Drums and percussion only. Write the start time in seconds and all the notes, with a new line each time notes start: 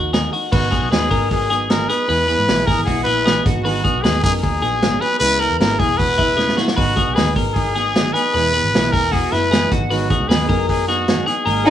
0.13 snare, closed hi-hat
0.33 open hi-hat
0.52 kick, crash
0.72 kick, hi-hat pedal, open hi-hat
0.92 snare, hi-hat pedal, open hi-hat
1.11 kick, hi-hat pedal, open hi-hat
1.31 kick, hi-hat pedal, open hi-hat
1.51 hi-hat pedal, open hi-hat
1.70 snare, hi-hat pedal, open hi-hat
1.89 hi-hat pedal, open hi-hat
2.09 hi-hat pedal, open hi-hat
2.29 hi-hat pedal, open hi-hat
2.48 snare, hi-hat pedal, open hi-hat
2.68 kick, hi-hat pedal, open hi-hat
2.87 kick, hi-hat pedal, open hi-hat
3.07 hi-hat pedal, open hi-hat
3.27 snare, hi-hat pedal, open hi-hat
3.46 kick, hi-hat pedal, open hi-hat
3.65 hi-hat pedal, open hi-hat
3.85 kick, hi-hat pedal, open hi-hat
4.04 snare, hi-hat pedal, open hi-hat
4.24 kick, hi-hat pedal, open hi-hat
4.43 kick, hi-hat pedal, open hi-hat
4.62 hi-hat pedal, open hi-hat
4.82 snare, hi-hat pedal, open hi-hat
5.02 hi-hat pedal, open hi-hat
5.22 hi-hat pedal, open hi-hat
5.41 hi-hat pedal, open hi-hat
5.60 snare, hi-hat pedal, open hi-hat
5.80 kick, hi-hat pedal, open hi-hat
5.99 kick, hi-hat pedal, open hi-hat
6.19 kick, hi-hat pedal, open hi-hat
6.39 snare
6.49 snare
6.58 snare
6.68 snare
6.77 kick, hi-hat pedal, open hi-hat
6.97 kick, hi-hat pedal, open hi-hat
7.17 snare, hi-hat pedal, open hi-hat
7.36 kick, hi-hat pedal, open hi-hat
7.56 kick, hi-hat pedal, open hi-hat
7.76 snare, hi-hat pedal, open hi-hat
7.95 snare, hi-hat pedal, open hi-hat
8.15 hi-hat pedal, open hi-hat
8.35 hi-hat pedal, open hi-hat
8.54 hi-hat pedal, open hi-hat
8.74 snare, hi-hat pedal, open hi-hat
8.93 kick, hi-hat pedal, open hi-hat
9.13 kick, hi-hat pedal, open hi-hat
9.33 snare, hi-hat pedal, open hi-hat
9.53 snare, hi-hat pedal, open hi-hat
9.72 kick, hi-hat pedal, open hi-hat
9.91 hi-hat pedal, open hi-hat
10.10 kick, hi-hat pedal, open hi-hat
10.30 snare, hi-hat pedal, open hi-hat
10.49 kick, hi-hat pedal, open hi-hat
10.69 kick, hi-hat pedal, open hi-hat
10.88 snare, hi-hat pedal, open hi-hat
11.08 snare, hi-hat pedal, open hi-hat
11.27 hi-hat pedal, open hi-hat
11.46 hi-hat pedal, open hi-hat
11.66 hi-hat pedal, open hi-hat